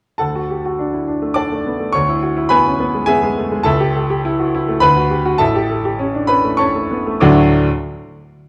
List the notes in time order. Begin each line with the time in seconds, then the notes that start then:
0.18 D2 A4 F#5 A5
0.35 F#4
0.50 G4
0.65 F#4
0.79 D4
0.93 E4
1.08 D4
1.22 A3
1.34 D4 D5 A5 D6
1.52 A3
1.66 B3
1.80 A3
1.93 D2 C#5 C#6
2.09 E4
2.23 F#4
2.37 E4
2.49 B3 B4 G#5 B5
2.66 C#4
2.80 B3
2.94 G#3
3.06 B3 G#4 E5 G#5
3.23 G#3
3.37 A3
3.52 G#3
3.63 C#2 A4 E5 A5
3.80 G4
3.96 A4
4.10 G4
4.25 E4
4.40 F#4
4.55 E4
4.68 A3
4.80 D2 B4 B5
4.97 F#4
5.11 G4
5.26 F#4
5.38 A1 A4 E5 A5
5.55 G4
5.70 A4
5.85 G4
5.99 C#4
6.14 D4
6.27 C#4 B4 B5
6.44 A3
6.57 C#4 C#5 A5 C#6
6.75 A3
6.91 B3
7.07 A3
7.20 D2 A2 F#3 A3 D4 F#4 D6